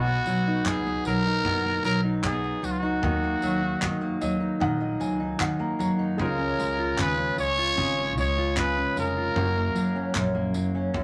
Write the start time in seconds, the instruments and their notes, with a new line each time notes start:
Already playing: upright bass B1, steel-string acoustic guitar B2, grand piano B3 F#4 D#5, trumpet F#4
0.07 steel-string acoustic guitar B3
0.25 upright bass B1, steel-string acoustic guitar F#3, tambourine
0.47 steel-string acoustic guitar D#4
0.66 upright bass C#2, steel-string acoustic guitar B2, trumpet G#4, kick, clap
0.86 steel-string acoustic guitar B3
1.05 upright bass B1, steel-string acoustic guitar F#3, trumpet A#4, tambourine
1.27 steel-string acoustic guitar D#4
1.45 upright bass F#1, steel-string acoustic guitar B2, kick
1.65 steel-string acoustic guitar B3
1.83 upright bass B1, steel-string acoustic guitar F#3, trumpet A#4, tambourine
2.04 steel-string acoustic guitar D#4
2.24 steel-string acoustic guitar B2, trumpet G#4, kick, clap
2.44 steel-string acoustic guitar B3
2.62 upright bass C#2, steel-string acoustic guitar F#3, trumpet F#4, tambourine
2.71 trumpet F4
2.78 trumpet F#4
2.83 steel-string acoustic guitar D#4
3.02 upright bass D#2, steel-string acoustic guitar D#3, grand piano A#3 F#4 D#5, kick
3.23 steel-string acoustic guitar A#3
3.42 upright bass D#2, steel-string acoustic guitar F#3, tambourine
3.63 steel-string acoustic guitar D#4
3.81 upright bass F#2, steel-string acoustic guitar D#3, kick, clap
4.01 steel-string acoustic guitar A#3
4.21 upright bass D#2, steel-string acoustic guitar F#3, grand piano D#5, tambourine
4.40 steel-string acoustic guitar D#4
4.60 upright bass A#1, steel-string acoustic guitar D#3, grand piano F#5, kick
4.80 steel-string acoustic guitar A#3, grand piano D#5
5.00 upright bass C#2, steel-string acoustic guitar F#3, grand piano G#5, tambourine
5.20 steel-string acoustic guitar D#4
5.40 upright bass D#2, steel-string acoustic guitar D#3, grand piano F#5, kick, clap
5.59 steel-string acoustic guitar A#3, grand piano A#5
5.79 upright bass F#2, steel-string acoustic guitar F#3, grand piano A#5, tambourine
5.99 steel-string acoustic guitar D#4
6.17 upright bass C#2, steel-string acoustic guitar C#3, grand piano G#3 F4 C#5, trumpet A#4, kick
6.39 steel-string acoustic guitar C#4
6.58 upright bass C#2, steel-string acoustic guitar G#3, tambourine
6.78 steel-string acoustic guitar F4
6.97 upright bass D#2, steel-string acoustic guitar C#3, trumpet B4, kick, clap
7.18 steel-string acoustic guitar C#4
7.37 upright bass C#2, steel-string acoustic guitar G#3, trumpet C#5, tambourine
7.58 steel-string acoustic guitar F4
7.77 upright bass G#1, steel-string acoustic guitar C#3, kick
7.98 steel-string acoustic guitar C#4
8.17 upright bass C#2, steel-string acoustic guitar G#3, trumpet C#5, tambourine
8.38 steel-string acoustic guitar F4
8.57 steel-string acoustic guitar C#3, trumpet B4, kick, clap
8.78 steel-string acoustic guitar C#4
8.96 upright bass F1, steel-string acoustic guitar G#3, trumpet A#4, tambourine
9.17 steel-string acoustic guitar F4
9.35 upright bass F#1, steel-string acoustic guitar F#2, grand piano A#3 F#4 C#5, kick
9.56 steel-string acoustic guitar A#3
9.75 upright bass F#1, steel-string acoustic guitar F#3, tambourine
9.96 steel-string acoustic guitar C#4
10.15 upright bass A#1, steel-string acoustic guitar F#2, kick, clap
10.35 steel-string acoustic guitar A#3
10.54 upright bass F#1, steel-string acoustic guitar F#3, tambourine
10.75 steel-string acoustic guitar C#4
10.94 upright bass C#2, steel-string acoustic guitar F#2, kick